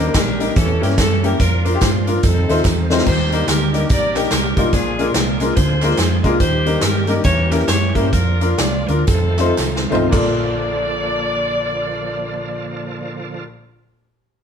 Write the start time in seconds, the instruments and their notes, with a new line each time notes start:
Already playing: grand piano D#3, tonewheel organ D#3 A#3 G4, saxophone section G4 A#4
0.00 saxophone section C5
0.06 grand piano G3 A#3 D4 D#4 A#4
0.14 fingered electric bass A#1, saxophone section D4 G4 A#4, kick, snare, clap, closed hi-hat, tambourine
0.39 grand piano G3 A#3 D4 D#4 A#4, closed hi-hat, tambourine
0.56 fingered electric bass E2, grand piano E3, tonewheel organ E3 C#4 G4, saxophone section C#4 A4, kick, closed hi-hat, tambourine
0.81 fingered electric bass G2, grand piano G3 A#3 C#4 E4 A#4, saxophone section G4, snare, closed hi-hat, tambourine
0.90 snare
0.98 fingered electric bass F#2, saxophone section A4, kick, snare, clap, closed hi-hat, tambourine
1.23 grand piano G3 A#3 C#4 E4 G4, saxophone section A#4, closed hi-hat, tambourine
1.39 fingered electric bass F2, tonewheel organ F3 D4, saxophone section D4 F4 A#4, kick, closed hi-hat, tambourine
1.65 grand piano D4 F4 A#4, saxophone section C5, closed hi-hat, tambourine
1.73 grand piano D4 F4 G4
1.81 fingered electric bass G2, saxophone section C5, kick, snare, clap, closed hi-hat, tambourine
2.07 grand piano D4 F4 A#4, saxophone section A#4, closed hi-hat, tambourine
2.23 fingered electric bass F2, tonewheel organ C3 D#3 A3 C4 F4, saxophone section C4 D#4 A4, kick, closed hi-hat, tambourine
2.49 fingered electric bass D#2, grand piano A3 C4 D#4 F4 C5, snare, closed hi-hat, tambourine
2.56 snare
2.65 fingered electric bass E2, kick, snare, clap, tambourine
2.90 grand piano A3 C4 D#4 F4 C5, snare, tambourine
2.98 snare
3.06 fingered electric bass D#2, grand piano D#3, tonewheel organ G3 A#3 D4 D#4 G4, saxophone section G4 C5, kick, crash, tambourine
3.31 grand piano G3 A#3 D4 D#4 A#4, closed hi-hat, tambourine
3.48 fingered electric bass D2, saxophone section A#4, snare, clap, closed hi-hat, tambourine
3.73 grand piano G3 A#3 D4 D#4 A#4, saxophone section A#4, closed hi-hat, tambourine
3.89 fingered electric bass A#1, saxophone section G4 A#4 D5, kick, closed hi-hat, tambourine
4.15 grand piano G3 A#3 D4 D#4 G4, saxophone section A#4, snare, clap, closed hi-hat, tambourine
4.23 snare
4.31 fingered electric bass C2, saxophone section A#4, snare, clap, closed hi-hat, tambourine
4.57 fingered electric bass B1, grand piano G3 A#3 D4 D#4 F4, saxophone section A#4, kick, closed hi-hat, tambourine
4.73 fingered electric bass A#1, grand piano A#2, tonewheel organ F3 G#3 G#4, saxophone section D4 F4 G#4, kick, closed hi-hat, tambourine
4.99 grand piano G#3 A#3 D4 F4 A#4, closed hi-hat, tambourine
5.07 saxophone section D4 F4 A#4
5.14 fingered electric bass C2, snare, clap, closed hi-hat, tambourine
5.40 grand piano G#3 A#3 D4 F4 A#4, saxophone section A#4, closed hi-hat, tambourine
5.56 fingered electric bass D2, grand piano D3, tonewheel organ F3, saxophone section F4 G#4 C5, kick, closed hi-hat, tambourine
5.82 grand piano G#3 A#3 D4 F4 A#4, snare, clap, closed hi-hat, tambourine
5.90 snare
5.98 fingered electric bass F2, snare, clap, closed hi-hat, tambourine
6.24 fingered electric bass C2, grand piano G#3 A#3 D4 F4 A#4, kick, closed hi-hat, tambourine
6.40 fingered electric bass D#2, tonewheel organ D#3 G3 G4, grand piano D#3, saxophone section G4 C5, kick, closed hi-hat, tambourine
6.66 grand piano G3 A#3 D4 D#4 A#4, closed hi-hat, tambourine
6.81 fingered electric bass G2, saxophone section A#4, snare, clap, closed hi-hat, tambourine
7.07 grand piano G3 A#3 D4 D#4 A#4, saxophone section A#4, closed hi-hat, tambourine
7.24 fingered electric bass E2, tonewheel organ E3 G3 C#4 G4, grand piano E3, saxophone section G4 A#4 C#5, kick, closed hi-hat, tambourine
7.51 grand piano G3 A#3 C#4 E4 A#4, saxophone section A#4, snare, clap, closed hi-hat, tambourine
7.59 snare
7.68 fingered electric bass F#2, saxophone section C#5, snare, clap, closed hi-hat, tambourine
7.94 fingered electric bass G2, grand piano G3 A#3 C#4 E4 A#4, saxophone section C5, kick, closed hi-hat, tambourine
8.12 fingered electric bass F2, tonewheel organ F3 D4, saxophone section D4 F4 A#4, kick, closed hi-hat, tambourine
8.41 grand piano D4 F4 A#4, closed hi-hat, tambourine
8.58 fingered electric bass C2, saxophone section D5, snare, clap, closed hi-hat, tambourine
8.88 fingered electric bass D2, grand piano D4 F4 A#4, saxophone section A#4, closed hi-hat, tambourine
9.06 fingered electric bass F2, tonewheel organ D#3 F3 A3 C4 F4, saxophone section C4 D#4 A4, kick, closed hi-hat, tambourine
9.38 grand piano A3 C4 D#4 F4 C5, snare, clap, closed hi-hat, tambourine
9.58 fingered electric bass C2, snare, clap, tambourine
9.76 snare
9.90 fingered electric bass B1, grand piano A3 C4 D#4 F4 C5, tambourine
9.95 floor tom
10.09 grand piano A#1 A#3 F4, fingered electric bass A#1, tonewheel organ D3 F3 A#3 F4 A4, saxophone section D5, kick, clap, crash
10.14 grand piano A4 D5